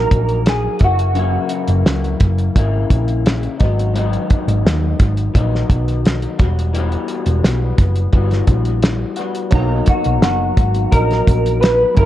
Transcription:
Already playing: F#3 A#3 D#4 A#4
0.11 A#1, kick, closed hi-hat
0.29 closed hi-hat
0.46 G#4, snare, closed hi-hat
0.79 F#1 A#3 E4, kick, closed hi-hat
0.83 E3 F#4
0.99 closed hi-hat
1.14 F#2 C#3 E3 A#3, closed hi-hat
1.18 E4
1.49 closed hi-hat
1.68 F#1, closed hi-hat
1.86 C#2, snare, closed hi-hat
2.04 closed hi-hat
2.20 F#1, kick, closed hi-hat
2.38 closed hi-hat
2.56 G#1 C#3 E3 A#3 E4, kick, closed hi-hat
2.90 A#1, kick, closed hi-hat
3.08 closed hi-hat
3.26 snare, closed hi-hat
3.43 closed hi-hat
3.59 G#1 F#3 B3 D#4, kick, closed hi-hat
3.79 closed hi-hat
3.94 G#2 D#3 F#3 B3, closed hi-hat
3.98 D#4
4.13 closed hi-hat
4.30 kick, closed hi-hat
4.48 G#1, closed hi-hat
4.65 D#2, snare, closed hi-hat
5.00 G#1, kick, closed hi-hat
5.17 closed hi-hat
5.34 A#1 D#3 F#3 B3 D#4, kick, closed hi-hat
5.55 snare
5.70 B1, kick, closed hi-hat
5.88 closed hi-hat
6.05 snare, closed hi-hat
6.22 closed hi-hat
6.39 E1 G3 B3 F#4, kick, closed hi-hat
6.59 closed hi-hat
6.74 E3 G3 B3, closed hi-hat
6.78 F#4
6.92 closed hi-hat
7.08 closed hi-hat
7.26 E1, closed hi-hat
7.43 B1, snare, closed hi-hat
7.78 F#1, kick, closed hi-hat
7.96 closed hi-hat
8.13 G1 E3 G3 B3 F#4, kick, closed hi-hat
8.31 snare, closed hi-hat
8.47 A#1, kick, closed hi-hat
8.65 closed hi-hat
8.83 snare, closed hi-hat
9.16 B3 F#4, closed hi-hat
9.20 G3
9.35 closed hi-hat
9.51 B1 B2 F#3 B3 D#4, kick, closed hi-hat
9.55 A#3 D#4 A#5
9.86 F#4, kick, closed hi-hat
10.04 B1, closed hi-hat
10.22 F#1 F#4, snare, closed hi-hat
10.57 G#1, kick, closed hi-hat
10.74 closed hi-hat
10.91 A#1 F#3 D#4 A#4, kick, closed hi-hat
11.10 snare, closed hi-hat
11.27 A#1, kick, closed hi-hat
11.46 closed hi-hat
11.61 B4, snare, closed hi-hat
11.94 F#1 F#3 C#4 E4 A#4, kick, closed hi-hat
11.99 E3 A#3 A#4

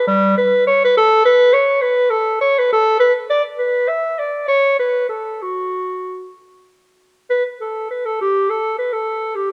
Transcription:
0.07 G3
0.37 B4
0.67 C#5
0.84 B4
0.97 A4
1.25 B4
1.53 C#5
1.82 B4
2.10 A4
2.41 C#5
2.58 B4
2.73 A4
3.00 B4
3.30 D5
3.59 B4
3.88 E5
4.19 D5
4.48 C#5
4.79 B4
5.09 A4
5.42 F#4
7.30 B4
7.61 A4
7.91 B4
8.06 A4
8.21 G4
8.50 A4
8.79 B4
8.93 A4
9.36 G4

